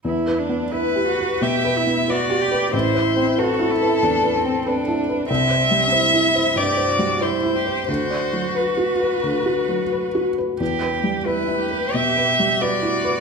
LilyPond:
<<
  \new Staff \with { instrumentName = "Violin" } { \time 4/4 \key e \minor \tempo 4 = 91 r4 b'4 e''4 d''4 | c''4 a'2~ a'8 r8 | e''2 d''4 c''4 | c''4 b'2~ b'8 r8 |
r4 b'4 e''4 d''4 | }
  \new Staff \with { instrumentName = "Felt piano" } { \time 4/4 \key e \minor \tuplet 3/2 { e,8 b'8 b8 b'8 g'8 b'8 b,8 b'8 b8 b'8 g'8 b'8 } | \tuplet 3/2 { a,,8 c''8 c'8 b'8 e'8 b'8 e,8 b'8 c'8 b'8 e'8 b'8 } | \tuplet 3/2 { c,8 c''8 g8 c''8 e'8 c''8 g,8 c''8 g8 c''8 e'8 c''8 } | \tuplet 3/2 { d,8 d''8 fis8 b'8 fis'8 b'8 d,8 fis'8 fis8 b'8 fis'8 b'8 } |
\tuplet 3/2 { e,8 b'8 g8 b'8 e'8 b'8 b,8 b'8 g8 b'8 e'8 b'8 } | }
  \new Staff \with { instrumentName = "Cello" } { \time 4/4 \key e \minor e'8 d'8 e'8 fis'8 g'8 e'8 fis'8 g'8 | e'4 fis'8 e'8 d'8 c'8 d'4 | c'4 e'4 g'8 fis'8 e'8 g'8 | fis'2.~ fis'8 r8 |
g'4 e'8 g'4. fis'4 | }
>>